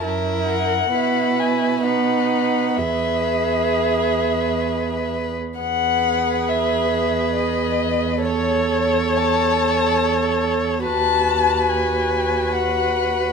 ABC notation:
X:1
M:3/4
L:1/16
Q:1/4=68
K:E
V:1 name="Violin"
z2 f4 g2 f4 | e8- e2 z2 | f4 e4 d4 | c4 a6 z2 |
a4 g4 f4 |]
V:2 name="Violin"
^A4 B4 B4 | B8- B3 z | B12 | c12 |
B12 |]
V:3 name="Viola"
E4 E4 D4 | G8- G3 z | G12 | A12 |
F12 |]
V:4 name="Cello" clef=bass
F,,4 B,,8 | E,,8- E,,3 z | E,,12- | E,,12 |
D,,12 |]